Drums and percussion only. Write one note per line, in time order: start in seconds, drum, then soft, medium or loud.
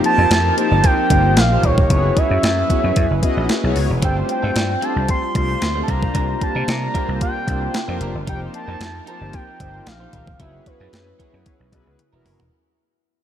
0.04 closed hi-hat medium
0.31 snare loud
0.31 closed hi-hat medium
0.58 closed hi-hat medium
0.84 kick loud
0.84 closed hi-hat medium
1.10 kick loud
1.10 closed hi-hat medium
1.37 snare loud
1.37 closed hi-hat medium
1.63 kick medium
1.63 closed hi-hat medium
1.78 kick loud
1.90 kick loud
1.90 closed hi-hat medium
2.17 kick loud
2.17 closed hi-hat medium
2.43 snare loud
2.43 closed hi-hat medium
2.70 kick medium
2.70 closed hi-hat medium
2.96 kick loud
2.96 closed hi-hat medium
3.23 kick loud
3.23 closed hi-hat medium
3.49 snare loud
3.49 closed hi-hat medium
3.76 open hi-hat medium
4.02 kick loud
4.02 closed hi-hat loud
4.29 closed hi-hat medium
4.56 snare loud
4.56 closed hi-hat medium
4.82 closed hi-hat medium
5.09 kick loud
5.09 closed hi-hat medium
5.35 kick loud
5.35 closed hi-hat medium
5.62 snare loud
5.62 closed hi-hat medium
5.88 kick loud
5.88 closed hi-hat medium
6.03 kick loud
6.15 kick loud
6.15 closed hi-hat loud
6.41 kick medium
6.41 closed hi-hat medium
6.68 snare loud
6.68 closed hi-hat medium
6.95 kick loud
6.95 closed hi-hat medium
7.21 kick loud
7.21 closed hi-hat medium
7.48 kick loud
7.48 closed hi-hat medium
7.74 snare loud
7.74 closed hi-hat medium
8.01 closed hi-hat medium
8.27 kick loud
8.27 closed hi-hat medium
8.54 closed hi-hat medium
8.81 snare loud
8.81 closed hi-hat medium
9.07 closed hi-hat medium
9.33 kick loud
9.33 closed hi-hat medium
9.60 kick loud
9.60 closed hi-hat medium
9.87 snare loud
9.87 closed hi-hat medium
10.13 kick loud
10.13 closed hi-hat medium
10.27 kick loud
10.40 kick loud
10.40 closed hi-hat medium
10.66 kick medium
10.66 closed hi-hat medium
10.93 snare loud
10.93 closed hi-hat medium
11.20 kick medium
11.20 closed hi-hat medium
11.46 kick loud
11.46 closed hi-hat medium
11.72 kick loud
11.72 closed hi-hat medium
11.99 closed hi-hat medium
11.99 high tom medium
12.26 mid tom loud
12.26 open hi-hat medium
12.40 floor tom loud